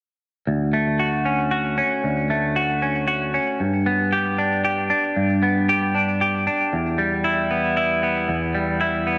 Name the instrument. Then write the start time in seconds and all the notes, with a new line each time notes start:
clean electric guitar
0.47 D2
0.73 A3
0.99 F#4
1.25 C#4
1.51 F#4
1.78 C#4
2.04 D2
2.30 A3
2.56 F#4
2.82 C#4
3.08 F#4
3.34 C#4
3.60 G2
3.86 B3
4.13 G4
4.38 D4
4.65 G4
4.90 D4
5.16 G2
5.43 B3
5.69 G4
5.95 D4
6.21 G4
6.47 D4
6.73 E2
6.98 G3
7.24 E4
7.51 B3
7.77 E4
8.03 B3
8.29 E2
8.55 G3
8.81 E4
9.07 B3